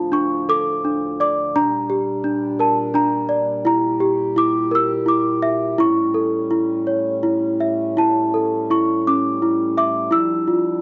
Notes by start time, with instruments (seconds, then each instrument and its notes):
Already playing: brass ensemble D2 A2 F3, celesta D4 F4 A5
0.12 celesta D4 C#6
0.49 celesta A4 D6
0.84 celesta D4
1.20 celesta D5 D6
1.55 brass ensemble A#2 G3 D4, celesta D4 A#5
1.90 celesta G4
2.24 celesta D4
2.59 celesta A#4 A5
2.94 celesta D4 A#5
3.29 celesta D5
3.65 brass ensemble G3 G4, celesta E4 A#5
4.00 celesta G4
4.36 celesta E4 D6
4.71 celesta A#4 E6
5.06 celesta E4 D6
5.42 celesta E5
5.78 brass ensemble A2 C#4, celesta E4 C#6
6.14 celesta A4
6.51 celesta E4
6.87 celesta C#5
7.23 celesta E4
7.60 celesta E5
7.97 celesta E4 A5
8.34 celesta A4
8.70 celesta E4 C#6
9.07 celesta C#4 D6
9.42 celesta E4
9.77 celesta E5 D6
10.11 brass ensemble F3 D4, celesta E4 E6
10.48 celesta F4